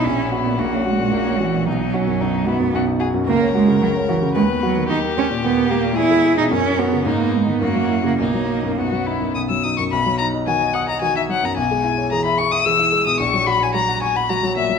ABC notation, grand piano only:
X:1
M:3/4
L:1/16
Q:1/4=110
K:B
V:1 name="Grand piano"
A,,, C F A,, A,,, C F A,, A,,, C F A,, | B,,, D F F,, B,,, D F F,, B,,, D F F,, | C,, C F C, C,, C F C, D,, B, F D, | D,, A, =G A,, D,, A, G A,, E,, ^G, ^G B,, |
F,, C F C, G,, B, D D, F,, F, E C, | B,,, F, D F,, B,,, F, D F,, B,,, F, D F,, | B,,, F, D d F d d' d F D F, F,, | B,,, G, E c G e c' e G E G, B,, |
A,,, F, F c F f c' f F F, A,, F, |]